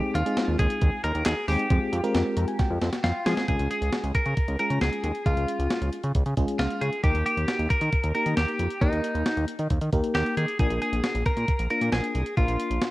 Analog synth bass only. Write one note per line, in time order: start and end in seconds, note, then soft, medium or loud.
0.15 0.23 D#2 loud
0.48 0.57 D#2 loud
0.59 0.68 D#2 loud
0.82 0.90 D#2 loud
1.04 1.12 D#2 loud
1.15 1.23 D#2 medium
1.26 1.34 D#2 loud
1.48 1.57 D#2 loud
1.70 1.79 F2 loud
1.93 2.01 F2 loud
2.15 2.23 F2 loud
2.37 2.46 F2 loud
2.70 2.79 F2 loud
2.81 2.90 F2 loud
3.04 3.12 F2 medium
3.26 3.34 F3 loud
3.48 3.57 C#2 loud
3.59 3.68 C#2 loud
3.81 3.90 C#2 loud
4.04 4.12 C#2 loud
4.26 4.34 C#3 medium
4.48 4.57 C#2 medium
4.70 4.79 C#3 medium
4.82 4.90 C#2 loud
5.04 5.12 D#2 loud
5.26 5.34 C#2 loud
5.37 5.46 C#2 medium
5.59 5.68 C#2 loud
5.81 5.90 C#2 medium
6.04 6.12 C#3 loud
6.15 6.23 C#2 loud
6.26 6.34 C#3 medium
6.37 6.46 C#2 medium
6.59 6.68 C#2 loud
6.82 6.90 C#3 loud
7.04 7.12 D#2 loud
7.15 7.23 D#2 loud
7.37 7.46 D#2 loud
7.59 7.68 D#2 loud
7.82 7.90 D#3 loud
8.04 8.12 D#2 loud
8.26 8.34 D#3 medium
8.37 8.46 D#2 medium
8.59 8.68 F2 medium
8.82 8.90 D#2 loud
8.93 9.01 D#2 medium
9.15 9.23 D#2 medium
9.37 9.46 D#2 loud
9.59 9.68 D#3 loud
9.71 9.79 D#2 loud
9.81 9.90 D#3 loud
9.93 10.01 D#2 loud
10.15 10.23 D#2 loud
10.37 10.46 D#3 loud
10.59 10.68 A#1 loud
10.70 10.79 A#1 loud
10.93 11.01 A#1 loud
11.15 11.23 A#1 medium
11.37 11.46 A#2 loud
11.59 11.68 A#1 loud
11.81 11.90 A#2 loud
11.93 12.01 A#1 medium
12.15 12.23 C2 medium
12.37 12.46 A#1 loud
12.48 12.57 A#1 loud
12.70 12.79 A#1 medium